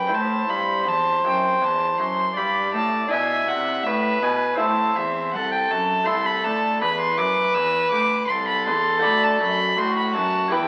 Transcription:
0.00 0.12 F#2 medium
0.00 0.13 B4 medium
0.00 0.16 G5 medium
0.07 3.04 C4 soft
0.07 3.05 E4 soft
0.07 3.05 C5 medium
0.11 0.45 A2 medium
0.11 0.49 A2 medium
0.11 2.35 C5 medium
0.11 0.51 A5 medium
0.49 0.83 G2 medium
0.49 0.89 G2 medium
0.49 0.90 B5 medium
0.86 1.20 E2 medium
0.86 1.24 E2 medium
0.86 1.25 A5 medium
1.24 1.58 F#2 medium
1.24 1.60 F#2 medium
1.24 1.65 G5 medium
1.61 1.98 E2 medium
1.61 1.95 E2 medium
1.61 2.00 A5 medium
1.98 2.35 F#2 medium
1.98 2.32 F#2 medium
1.98 2.39 C6 loud
2.35 2.75 G2 medium
2.35 2.70 G2 medium
2.35 3.12 D5 medium
2.35 2.74 B5 loud
2.74 3.10 A2 medium
2.74 3.07 A2 medium
2.74 3.10 A5 loud
3.08 3.47 B2 medium
3.08 4.54 D4 soft
3.08 4.55 E4 medium
3.08 4.55 E5 medium
3.08 3.87 E5 medium
3.08 3.49 G#5 medium
3.12 3.45 B2 medium
3.48 3.84 C3 medium
3.48 3.82 C3 medium
3.48 3.85 F#5 medium
3.84 4.22 A2 medium
3.84 4.20 A2 medium
3.84 4.60 B4 medium
3.84 4.24 E5 medium
4.22 4.56 B2 medium
4.22 4.59 B2 medium
4.22 4.59 G#5 medium
4.55 6.02 C4 medium
4.55 6.02 E4 medium
4.55 6.03 E5 medium
4.59 4.93 A2 medium
4.59 4.96 A2 medium
4.59 5.37 C5 medium
4.59 4.97 A5 medium
4.96 5.36 E2 medium
4.96 5.30 E2 medium
4.96 5.33 E5 medium
5.34 5.71 C2 medium
5.34 6.07 A4 medium
5.34 5.53 F#5 medium
5.52 5.72 G5 medium
5.71 6.04 F#2 medium
5.71 6.08 F#2 medium
5.71 6.07 A5 loud
6.04 8.98 A3 medium
6.04 8.99 E4 medium
6.04 6.83 A4 medium
6.04 9.00 E5 medium
6.04 6.27 C6 loud
6.09 6.47 C2 medium
6.26 6.46 B5 loud
6.44 6.78 D2 medium
6.44 6.83 D2 medium
6.44 6.81 A5 loud
6.81 7.15 E2 medium
6.81 7.21 E2 medium
6.81 8.31 B4 medium
6.81 7.00 B5 loud
7.00 7.19 C6 medium
7.18 7.52 F#2 medium
7.18 7.55 F#2 medium
7.18 7.56 D6 medium
7.54 7.89 E2 medium
7.54 7.92 E2 medium
7.54 7.91 E6 loud
7.91 8.26 D2 medium
7.91 8.30 D2 medium
7.91 8.27 D6 loud
8.27 8.69 C2 medium
8.27 9.78 A4 medium
8.27 8.47 C6 loud
8.48 8.66 B5 loud
8.66 9.01 E2 medium
8.66 9.07 E2 medium
8.66 9.03 C6 loud
8.99 10.47 A3 medium
8.99 10.47 F#4 medium
8.99 10.48 D5 medium
9.03 9.38 D2 medium
9.03 9.42 D2 medium
9.03 9.25 B5 loud
9.24 9.39 A5 loud
9.40 9.75 F#2 medium
9.40 9.79 F#2 medium
9.40 9.80 B5 loud
9.77 10.12 A2 medium
9.77 10.18 A2 medium
9.77 10.54 F#4 medium
9.77 9.97 C6 loud
9.97 10.15 B5 medium
10.15 10.49 F#2 medium
10.15 10.53 F#2 medium
10.15 10.52 A5 loud
10.48 10.68 E4 medium
10.48 10.68 G4 medium
10.48 10.68 B4 medium
10.52 10.68 E2 medium
10.52 10.68 E4 medium
10.52 10.68 G5 loud

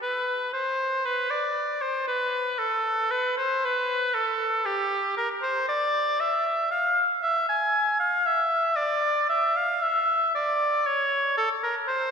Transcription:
0.03 0.51 B4 medium
0.54 1.07 C5 medium
1.05 1.32 B4 medium
1.30 1.83 D5 medium
1.82 2.07 C5 medium
2.07 2.60 B4 medium
2.59 3.13 A4 medium
3.11 3.37 B4 loud
3.37 3.66 C5 medium
3.65 4.16 B4 loud
4.14 4.67 A4 medium
4.66 5.17 G4 medium
5.17 5.29 A#4 medium
5.42 5.67 C5 medium
5.69 6.22 D5 loud
6.20 6.70 E5 loud
6.71 7.03 F5 loud
7.23 7.46 E5 loud
7.49 7.99 G#5 medium
8.00 8.27 F5 loud
8.26 8.78 E5 loud
8.76 9.28 D5 loud
9.29 9.58 E5 loud
9.56 9.84 F5 loud
9.82 10.34 E5 loud
10.35 10.88 D5 loud
10.86 11.37 C#5 loud
11.38 11.49 A4 medium
11.63 11.75 A#4 medium
11.88 12.11 C5 medium

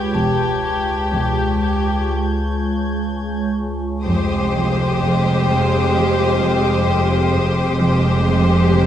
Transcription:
0.00 0.14 G4 soft
0.00 0.60 B4 soft
0.00 0.59 B5 soft
0.00 3.54 G6 soft
0.00 3.54 G#6 soft
0.13 0.99 E1 soft
0.13 4.02 C#2 soft
0.13 0.99 E2 soft
0.13 0.63 G4 soft
0.13 2.08 A5 soft
0.65 1.13 G4 soft
1.13 1.99 E1 soft
1.13 1.98 E2 soft
1.13 1.62 G4 soft
1.63 2.11 G4 soft
4.05 7.76 F1 soft
4.05 4.35 F2 soft
4.05 7.76 F2 soft
4.05 7.76 F2 medium
4.05 7.76 G#3 soft
4.05 7.76 G4 soft
4.05 7.76 C5 soft
4.05 8.86 C6 soft
4.05 8.86 D6 soft
4.05 8.86 D#6 soft
4.54 4.82 F3 soft
5.01 5.29 F2 soft
5.48 5.76 F2 soft
5.48 8.23 G5 soft
5.94 6.22 F3 soft
6.40 6.68 F2 soft
6.87 7.15 F2 soft
7.34 7.62 F2 soft
7.79 8.86 F1 soft
7.79 8.08 F2 soft
7.79 8.86 F2 soft
7.79 8.86 G#3 soft
7.79 8.86 G4 soft
7.79 8.86 C5 soft
8.25 8.53 F3 soft
8.73 8.86 F2 soft

